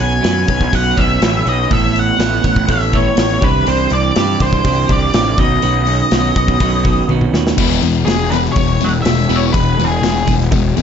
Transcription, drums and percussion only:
0.00 open hi-hat
0.24 snare, open hi-hat
0.48 kick, open hi-hat
0.61 kick
0.73 kick, open hi-hat
0.98 kick, open hi-hat
1.22 snare, open hi-hat
1.47 open hi-hat
1.71 kick, open hi-hat
1.96 open hi-hat
2.20 snare, open hi-hat
2.44 kick, open hi-hat
2.56 kick
2.69 kick, open hi-hat
2.93 kick, open hi-hat
3.17 snare, open hi-hat
3.42 kick, open hi-hat
3.67 open hi-hat
3.90 open hi-hat
4.16 snare, open hi-hat
4.40 kick, open hi-hat
4.53 kick
4.65 kick, open hi-hat
4.89 kick, open hi-hat
5.14 snare, open hi-hat
5.38 kick, open hi-hat
5.62 open hi-hat
5.87 open hi-hat
6.11 snare, open hi-hat
6.36 kick, open hi-hat
6.48 kick
6.60 kick, open hi-hat
6.85 kick, open hi-hat
7.09 high tom
7.21 mid tom
7.34 snare
7.47 snare
7.58 kick, crash
7.83 open hi-hat
8.08 snare, open hi-hat
8.32 open hi-hat
8.45 snare
8.56 kick, open hi-hat
8.81 open hi-hat
9.05 snare, open hi-hat
9.30 open hi-hat
9.54 kick, open hi-hat
9.80 open hi-hat
10.03 snare, open hi-hat
10.28 kick, open hi-hat
10.41 snare
10.52 kick, open hi-hat
10.77 open hi-hat

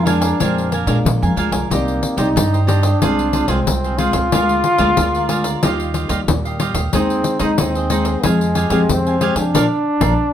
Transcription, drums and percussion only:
0.07 pandeiro
0.22 pandeiro
0.40 pandeiro
0.58 pandeiro
0.72 pandeiro
0.87 pandeiro
1.06 pandeiro
1.23 pandeiro
1.37 pandeiro
1.52 pandeiro
1.71 pandeiro
1.88 pandeiro
2.03 pandeiro
2.18 pandeiro
2.37 pandeiro
2.54 pandeiro
2.68 pandeiro
2.83 pandeiro
3.02 pandeiro
3.19 pandeiro
3.33 pandeiro
3.48 pandeiro
3.67 pandeiro
3.84 pandeiro
3.98 pandeiro
4.13 pandeiro
4.32 pandeiro
4.49 pandeiro
4.64 pandeiro
4.78 pandeiro
4.97 pandeiro
5.15 pandeiro
5.29 pandeiro
5.44 pandeiro
5.63 pandeiro
5.80 pandeiro
5.94 pandeiro
6.09 pandeiro
6.28 pandeiro
6.45 pandeiro
6.60 pandeiro
6.75 pandeiro
6.93 pandeiro
7.10 pandeiro
7.24 pandeiro
7.39 pandeiro
7.58 pandeiro
7.75 pandeiro
7.90 pandeiro
8.05 pandeiro
8.23 pandeiro
8.41 pandeiro
8.55 pandeiro
8.70 pandeiro
8.89 pandeiro
9.07 pandeiro
9.21 pandeiro
9.36 pandeiro
9.55 pandeiro
10.01 pandeiro

